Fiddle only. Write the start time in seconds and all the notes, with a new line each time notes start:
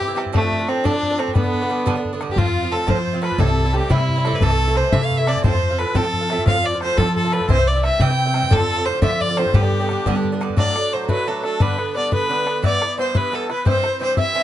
Already playing: G4
0.34 A3
0.68 C4
0.85 D4
1.19 C4
1.35 B3
2.31 G4
2.38 F4
2.72 A4
2.89 C5
3.23 B4
3.39 A4
3.70 A4
3.74 G4
3.90 E4
4.35 B4
4.43 A4
4.77 C5
4.93 E5
5.05 F5
5.17 E5
5.28 D5
5.44 C5
5.79 B4
5.95 A4
6.47 F5
6.65 D5
6.82 C5
6.98 A4
7.16 A4
7.33 B4
7.50 C5
7.67 D5
7.84 E5
8.01 G5
8.52 A4
8.86 C5
9.03 E5
9.21 D5
9.38 C5
9.54 G4
10.58 D5
10.93 C5
11.10 B4
11.28 A4
11.44 A4
11.61 B4
11.96 D5
12.14 B4
12.65 D5
13.00 C5
13.17 B4
13.34 A4
13.51 B4
13.67 C5
14.03 C5
14.19 E5